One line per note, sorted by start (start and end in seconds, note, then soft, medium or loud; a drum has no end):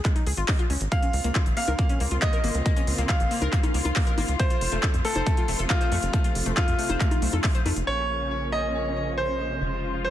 0.05 0.10 G#3 loud
0.05 kick loud
0.05 clap medium
0.05 closed hi-hat medium
0.16 0.23 D#4 medium
0.16 closed hi-hat medium
0.27 0.33 C#2 medium
0.27 0.31 G#4 medium
0.27 open hi-hat loud
0.37 0.44 G#1 medium
0.37 0.45 F4 medium
0.37 closed hi-hat medium
0.48 0.53 D#5 medium
0.48 kick loud
0.48 clap loud
0.48 open hi-hat medium
0.59 0.62 F4 loud
0.59 closed hi-hat medium
0.70 0.77 C#2 medium
0.70 0.75 C#4 medium
0.70 open hi-hat loud
0.81 0.88 G#1 medium
0.81 closed hi-hat medium
0.92 4.36 C#3 medium
0.92 0.97 A#3 loud
0.92 4.36 A#3 medium
0.92 4.36 C4 medium
0.92 7.83 F4 medium
0.92 1.48 F5 medium
0.92 kick loud
0.92 closed hi-hat medium
1.03 1.07 C#4 medium
1.03 closed hi-hat medium
1.13 1.20 C#2 loud
1.13 open hi-hat loud
1.24 1.31 C#2 medium
1.24 1.29 A#3 medium
1.24 closed hi-hat medium
1.35 1.42 F4 medium
1.35 kick loud
1.35 clap loud
1.35 closed hi-hat medium
1.46 1.53 G#1 medium
1.46 closed hi-hat medium
1.57 1.62 A#3 medium
1.57 2.13 F5 medium
1.57 open hi-hat loud
1.68 1.75 C#2 medium
1.68 1.73 A#4 loud
1.68 closed hi-hat medium
1.68 high conga medium
1.79 1.84 A#3 loud
1.79 kick loud
1.79 closed hi-hat medium
1.89 1.97 C#4 medium
1.89 closed hi-hat medium
2.00 2.07 C#2 medium
2.00 2.03 A#3 medium
2.00 open hi-hat loud
2.11 2.18 C#2 medium
2.11 2.16 F4 medium
2.11 closed hi-hat medium
2.22 2.29 A#3 medium
2.22 3.00 D#5 medium
2.22 kick loud
2.22 clap loud
2.22 closed hi-hat medium
2.33 2.38 A#4 loud
2.33 closed hi-hat medium
2.44 2.51 G#1 medium
2.44 2.47 A#3 loud
2.44 open hi-hat loud
2.55 2.62 C#2 medium
2.55 closed hi-hat medium
2.66 2.70 A#3 loud
2.66 kick loud
2.66 closed hi-hat medium
2.77 2.81 C#4 medium
2.77 closed hi-hat medium
2.87 2.94 C#2 medium
2.87 open hi-hat loud
2.98 3.05 C#2 medium
2.98 3.03 A#3 medium
2.98 closed hi-hat medium
3.09 3.16 F4 medium
3.09 4.31 F5 medium
3.09 kick loud
3.09 clap loud
3.09 closed hi-hat medium
3.20 3.27 G#1 medium
3.20 closed hi-hat medium
3.31 3.36 A#3 medium
3.31 open hi-hat loud
3.42 3.49 C#2 medium
3.42 3.46 A#4 loud
3.42 closed hi-hat medium
3.42 high conga medium
3.53 3.57 A#3 loud
3.53 kick loud
3.53 clap medium
3.53 closed hi-hat medium
3.63 3.71 C#4 medium
3.63 closed hi-hat medium
3.63 high conga medium
3.74 3.81 C#2 loud
3.74 3.77 A#3 medium
3.74 open hi-hat loud
3.85 3.92 C#2 medium
3.85 3.90 F4 medium
3.85 closed hi-hat medium
3.85 high conga medium
3.96 4.03 A#3 medium
3.96 kick loud
3.96 clap loud
3.96 open hi-hat medium
4.07 4.12 A#4 loud
4.07 closed hi-hat medium
4.18 4.25 G#1 medium
4.18 4.21 A#3 loud
4.18 open hi-hat loud
4.18 high conga medium
4.29 4.35 C#2 medium
4.29 closed hi-hat medium
4.39 7.84 C3 medium
4.39 7.84 F3 medium
4.39 4.44 A3 loud
4.39 7.84 A3 medium
4.39 4.96 C5 loud
4.39 kick loud
4.39 closed hi-hat medium
4.50 4.55 F4 medium
4.50 closed hi-hat medium
4.61 4.68 F1 loud
4.61 open hi-hat loud
4.72 4.79 F1 medium
4.72 4.77 A3 medium
4.72 closed hi-hat medium
4.83 4.90 A4 medium
4.83 kick loud
4.83 clap loud
4.83 closed hi-hat medium
4.94 5.01 F2 medium
4.94 closed hi-hat medium
5.05 5.10 A3 medium
5.05 5.61 A4 medium
5.05 open hi-hat loud
5.16 5.22 F1 medium
5.16 5.20 C5 loud
5.16 closed hi-hat medium
5.16 high conga medium
5.26 5.31 A3 loud
5.26 kick loud
5.26 closed hi-hat medium
5.37 5.45 F4 medium
5.37 closed hi-hat medium
5.48 5.55 F1 medium
5.48 5.51 A3 medium
5.48 open hi-hat loud
5.59 5.66 F1 medium
5.59 5.64 A4 medium
5.59 closed hi-hat medium
5.70 5.77 A3 medium
5.70 6.48 F4 medium
5.70 kick loud
5.70 clap loud
5.70 closed hi-hat medium
5.81 5.86 C5 loud
5.81 closed hi-hat medium
5.92 5.99 F2 medium
5.92 5.95 A3 loud
5.92 open hi-hat loud
6.03 6.09 F1 medium
6.03 closed hi-hat medium
6.13 6.18 A3 medium
6.13 kick loud
6.13 closed hi-hat medium
6.24 6.29 F4 medium
6.24 closed hi-hat medium
6.35 6.42 F1 medium
6.35 open hi-hat loud
6.46 6.53 F1 medium
6.46 6.51 A3 medium
6.46 closed hi-hat medium
6.57 7.79 F4 medium
6.57 6.64 A4 medium
6.57 kick loud
6.57 clap loud
6.57 closed hi-hat medium
6.68 6.75 F2 medium
6.68 closed hi-hat medium
6.79 6.83 A3 medium
6.79 open hi-hat loud
6.90 6.96 F1 medium
6.90 6.94 C5 loud
6.90 closed hi-hat medium
6.90 high conga medium
7.00 7.05 A3 loud
7.00 kick loud
7.00 clap medium
7.00 closed hi-hat medium
7.11 7.19 F4 medium
7.11 closed hi-hat medium
7.11 high conga medium
7.22 7.29 C2 medium
7.22 7.25 A3 medium
7.22 open hi-hat loud
7.33 7.40 F2 medium
7.33 7.38 A4 medium
7.33 closed hi-hat medium
7.33 high conga medium
7.44 7.51 A3 medium
7.44 kick loud
7.44 clap loud
7.44 open hi-hat medium
7.55 7.60 C5 loud
7.55 closed hi-hat medium
7.66 7.73 F2 medium
7.66 7.69 A3 loud
7.66 open hi-hat loud
7.66 high conga medium
7.77 7.83 F1 medium
7.77 closed hi-hat medium
7.87 9.59 A#1 medium
7.87 10.10 C#3 medium
7.87 9.60 F3 medium
7.87 9.60 A#3 medium
7.87 9.60 C#4 medium
7.87 8.44 C#5 medium
8.52 9.09 D#5 medium
9.18 9.96 C5 medium
9.61 10.10 F1 medium
9.61 10.10 F3 medium
9.61 10.10 G#3 medium
9.61 10.10 F4 medium
10.05 10.10 C5 medium